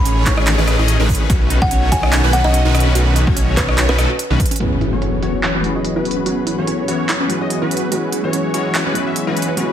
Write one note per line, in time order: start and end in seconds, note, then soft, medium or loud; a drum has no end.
0.00 0.24 A1 loud
0.00 0.24 D#3 medium
0.00 0.24 A3 medium
0.00 0.24 C#4 medium
0.00 0.24 G#4 medium
0.00 0.24 C#5 medium
0.00 0.24 B5 medium
0.05 0.12 C#4 medium
0.05 closed hi-hat medium
0.26 0.56 A1 loud
0.26 0.56 D#3 loud
0.26 0.56 A3 medium
0.26 0.56 C#4 medium
0.26 0.31 E4 medium
0.26 0.56 G#4 medium
0.26 0.56 C#5 loud
0.26 0.85 C#6 loud
0.26 kick medium
0.26 clap medium
0.26 closed hi-hat medium
0.37 cross-stick medium
0.47 0.50 D#4 loud
0.47 clap loud
0.47 closed hi-hat medium
0.58 0.77 A1 loud
0.58 0.76 D#3 loud
0.58 0.76 A3 medium
0.58 0.62 C#4 medium
0.58 0.76 C#4 medium
0.58 0.76 G#4 medium
0.58 0.76 B4 loud
0.58 cross-stick medium
0.68 cross-stick medium
0.68 closed hi-hat medium
0.79 0.97 A1 loud
0.79 0.97 D#3 medium
0.79 0.97 A3 medium
0.79 0.97 C#4 medium
0.79 0.81 E4 medium
0.79 0.97 G#4 medium
0.79 0.97 D#5 medium
0.88 closed hi-hat medium
1.00 1.28 A1 loud
1.00 1.28 D#3 loud
1.00 1.28 A3 medium
1.00 1.28 C#4 medium
1.00 1.03 D#4 medium
1.00 1.28 G#4 medium
1.00 1.27 B4 loud
1.09 kick medium
1.09 open hi-hat medium
1.15 closed hi-hat medium
1.20 1.23 C#4 medium
1.30 1.60 B1 loud
1.30 1.59 D#3 medium
1.30 1.59 A3 medium
1.30 1.59 C#4 medium
1.30 1.59 F#4 medium
1.30 1.36 F#4 medium
1.30 1.59 B4 medium
1.30 kick loud
1.30 closed hi-hat medium
1.50 1.55 D#4 medium
1.50 closed hi-hat medium
1.62 1.90 B1 medium
1.62 1.89 C#4 medium
1.62 1.90 F#4 medium
1.62 1.73 F#5 loud
1.62 kick loud
1.71 1.78 C#4 medium
1.71 closed hi-hat medium
1.92 2.22 B1 loud
1.92 2.21 D#3 loud
1.92 2.21 A3 medium
1.92 2.21 C#4 medium
1.92 2.21 F#4 medium
1.92 1.96 F#4 medium
1.92 2.21 C#5 loud
1.92 2.24 G#5 medium
1.92 kick medium
1.92 closed hi-hat medium
2.03 cross-stick medium
2.13 2.15 D#4 loud
2.13 clap loud
2.13 closed hi-hat medium
2.24 2.42 B1 loud
2.24 2.42 D#3 loud
2.24 2.42 A3 medium
2.24 2.27 C#4 medium
2.24 2.42 C#4 medium
2.24 2.42 F#4 medium
2.24 2.42 B4 loud
2.33 2.42 F#5 loud
2.33 closed hi-hat medium
2.44 2.63 B1 medium
2.44 2.62 D#3 medium
2.44 2.62 A3 medium
2.44 2.62 C#4 medium
2.44 2.47 F#4 medium
2.44 2.63 F#4 medium
2.44 2.56 D#5 loud
2.44 2.62 D#5 medium
2.54 closed hi-hat medium
2.65 2.93 B1 loud
2.65 2.93 D#3 loud
2.65 2.93 A3 medium
2.65 2.93 C#4 medium
2.65 2.69 D#4 medium
2.65 2.93 F#4 medium
2.65 2.93 B4 loud
2.75 cross-stick medium
2.75 closed hi-hat medium
2.80 closed hi-hat medium
2.86 2.88 C#4 medium
2.95 3.25 B1 loud
2.95 3.25 D#3 medium
2.95 3.25 A3 medium
2.95 3.25 C#4 medium
2.95 3.02 F#4 medium
2.95 3.25 F#4 medium
2.95 3.25 B4 medium
2.95 closed hi-hat medium
3.16 3.20 D#4 medium
3.16 closed hi-hat medium
3.27 3.55 B1 medium
3.27 3.55 D#3 medium
3.27 3.55 A3 medium
3.27 3.55 C#4 medium
3.27 3.55 F#4 medium
3.27 3.55 C#5 medium
3.27 kick loud
3.36 3.43 C#4 medium
3.36 closed hi-hat medium
3.57 3.87 B1 loud
3.57 3.87 D#3 loud
3.57 3.87 A3 loud
3.57 3.62 F#4 medium
3.57 3.87 F#4 medium
3.57 3.70 B4 loud
3.57 3.87 C#5 loud
3.57 kick medium
3.57 clap medium
3.57 closed hi-hat medium
3.69 cross-stick medium
3.78 3.80 D#4 loud
3.78 clap loud
3.78 closed hi-hat medium
3.89 3.97 B1 loud
3.89 3.97 D#3 loud
3.89 3.97 A3 medium
3.89 3.93 C#4 medium
3.89 3.97 C#4 medium
3.89 3.97 F#4 loud
3.89 4.31 B4 medium
3.89 3.97 B4 loud
3.89 cross-stick medium
3.99 4.06 B1 loud
3.99 4.09 D#3 loud
3.99 4.09 A3 medium
3.99 4.09 C#4 medium
3.99 4.09 F#4 medium
3.99 4.09 A4 loud
3.99 cross-stick medium
3.99 closed hi-hat medium
4.10 4.12 F#4 medium
4.19 closed hi-hat medium
4.30 4.37 B1 medium
4.30 4.39 D#3 medium
4.30 4.39 A3 medium
4.30 4.39 C#4 medium
4.30 4.34 D#4 medium
4.30 4.39 F#4 medium
4.30 4.39 B4 medium
4.40 kick medium
4.40 closed hi-hat medium
4.46 closed hi-hat medium
4.51 4.53 C#4 medium
4.51 closed hi-hat medium
4.56 4.89 F#3 medium
4.56 closed hi-hat medium
4.60 4.90 E3 medium
4.60 9.73 F#3 medium
4.60 4.90 B3 medium
4.60 4.90 C#4 medium
4.60 9.73 E4 medium
4.60 4.90 E4 medium
4.60 4.67 F#4 medium
4.60 4.90 F#4 medium
4.60 4.90 G#4 medium
4.60 7.88 B4 medium
4.60 4.90 B4 medium
4.60 9.73 C#5 medium
4.60 closed hi-hat medium
4.60 impact medium
4.81 4.86 E4 medium
4.81 closed hi-hat medium
4.90 5.20 E3 medium
4.90 5.61 F#3 medium
4.90 5.61 B3 medium
4.90 5.21 B3 medium
4.90 5.62 C#4 medium
4.90 5.20 C#4 medium
4.90 5.62 E4 medium
4.90 5.21 F#4 medium
4.90 5.21 C#5 medium
4.94 5.63 A4 medium
5.02 5.09 C#4 medium
5.02 closed hi-hat medium
5.22 5.52 E3 loud
5.22 5.52 B3 medium
5.22 5.52 C#4 medium
5.22 5.27 F#4 medium
5.22 5.52 F#4 medium
5.22 5.52 C#5 loud
5.22 closed hi-hat medium
5.43 5.46 E4 loud
5.43 clap medium
5.43 closed hi-hat medium
5.55 5.73 E3 loud
5.55 5.73 B3 medium
5.55 5.58 C#4 medium
5.55 5.73 C#4 medium
5.55 5.73 F#4 medium
5.55 5.73 B4 loud
5.62 6.23 F#3 medium
5.62 6.24 B3 medium
5.62 6.24 C#4 medium
5.62 6.25 E4 medium
5.62 closed hi-hat medium
5.66 6.25 G#4 medium
5.75 5.93 E3 medium
5.75 5.93 B3 medium
5.75 5.93 C#4 medium
5.75 5.77 F#4 medium
5.75 5.93 F#4 medium
5.75 5.93 D#5 medium
5.85 closed hi-hat medium
5.96 6.24 E3 medium
5.96 6.24 B3 medium
5.96 6.24 C#4 medium
5.96 6.00 E4 medium
5.96 6.24 F#4 medium
5.96 6.24 B4 loud
6.05 closed hi-hat soft
6.11 closed hi-hat medium
6.17 6.19 C#4 medium
6.26 6.56 E3 medium
6.26 6.55 F#3 medium
6.26 6.55 B3 medium
6.26 6.56 B3 medium
6.26 6.56 C#4 medium
6.26 6.56 E4 medium
6.26 6.33 F#4 medium
6.26 6.56 F#4 medium
6.26 6.56 G#4 medium
6.26 6.56 B4 medium
6.26 closed hi-hat medium
6.47 6.51 E4 medium
6.47 closed hi-hat medium
6.56 6.86 E3 medium
6.56 7.26 F#3 medium
6.56 7.27 B3 medium
6.56 6.86 B3 medium
6.56 7.27 C#4 medium
6.56 6.86 C#4 medium
6.56 7.28 E4 medium
6.56 6.86 F#4 medium
6.56 7.28 A4 medium
6.56 6.86 C#5 medium
6.67 6.74 C#4 medium
6.67 closed hi-hat medium
6.88 7.18 E3 loud
6.88 7.18 B3 medium
6.88 7.18 C#4 medium
6.88 6.93 F#4 medium
6.88 7.18 F#4 medium
6.88 7.18 C#5 loud
6.88 closed hi-hat medium
7.09 7.12 E4 loud
7.09 clap medium
7.09 closed hi-hat medium
7.20 7.38 E3 medium
7.20 7.38 B3 medium
7.20 7.24 C#4 medium
7.20 7.38 C#4 medium
7.20 7.38 F#4 medium
7.20 7.38 B4 loud
7.28 7.89 F#3 medium
7.28 7.89 B3 medium
7.28 7.90 C#4 medium
7.28 7.90 E4 medium
7.28 7.91 G#4 medium
7.28 closed hi-hat medium
7.41 7.59 E3 medium
7.41 7.59 B3 medium
7.41 7.59 C#4 medium
7.41 7.43 F#4 medium
7.41 7.59 F#4 medium
7.41 7.59 D#5 medium
7.50 closed hi-hat medium
7.62 7.90 E3 medium
7.62 7.90 B3 medium
7.62 7.90 C#4 medium
7.62 7.65 E4 medium
7.62 7.90 F#4 medium
7.62 7.90 B4 loud
7.71 closed hi-hat soft
7.77 closed hi-hat medium
7.82 7.85 C#4 medium
7.91 8.21 E3 medium
7.91 8.20 F#3 medium
7.91 8.21 G#3 medium
7.91 8.21 B3 medium
7.91 8.21 C#4 medium
7.91 8.21 E4 medium
7.91 7.98 F#4 medium
7.91 8.21 F#4 medium
7.91 9.73 G#4 medium
7.91 8.22 G#4 medium
7.91 8.21 B4 medium
7.91 closed hi-hat medium
8.12 8.17 E4 medium
8.12 closed hi-hat medium
8.22 8.52 E3 medium
8.22 8.92 F#3 medium
8.22 8.52 G#3 medium
8.22 8.92 B3 medium
8.22 8.52 C#4 medium
8.22 8.93 C#4 medium
8.22 8.93 E4 medium
8.22 8.52 F#4 medium
8.22 8.52 C#5 medium
8.26 8.94 B4 medium
8.33 8.40 C#4 medium
8.33 closed hi-hat medium
8.54 8.83 E3 medium
8.54 8.83 G#3 medium
8.54 8.83 C#4 medium
8.54 8.58 F#4 medium
8.54 8.83 F#4 medium
8.54 8.83 C#5 loud
8.54 closed hi-hat medium
8.75 8.77 E4 loud
8.75 clap medium
8.75 closed hi-hat medium
8.86 9.04 E3 medium
8.86 9.04 G#3 medium
8.86 8.90 C#4 medium
8.86 9.04 C#4 medium
8.86 9.04 F#4 medium
8.86 9.04 B4 loud
8.93 9.54 F#3 medium
8.93 9.55 B3 medium
8.93 9.55 C#4 medium
8.93 9.56 E4 medium
8.93 9.56 G#4 loud
8.93 closed hi-hat medium
9.06 9.25 E3 medium
9.06 9.25 G#3 medium
9.06 9.25 C#4 medium
9.06 9.09 F#4 medium
9.06 9.25 F#4 medium
9.06 9.25 E5 medium
9.16 closed hi-hat medium
9.27 9.55 E3 medium
9.27 9.55 G#3 medium
9.27 9.55 C#4 medium
9.27 9.31 E4 medium
9.27 9.55 F#4 medium
9.27 9.55 B4 loud
9.37 closed hi-hat soft
9.42 closed hi-hat medium
9.48 9.50 C#4 medium
9.56 9.73 E3 medium
9.56 9.73 F#3 medium
9.56 9.73 G#3 medium
9.56 9.73 B3 medium
9.56 9.73 C#4 medium
9.56 9.73 E4 medium
9.56 9.73 F#4 medium
9.56 9.64 F#4 medium
9.56 9.73 G#4 loud
9.56 9.73 B4 medium
9.56 closed hi-hat medium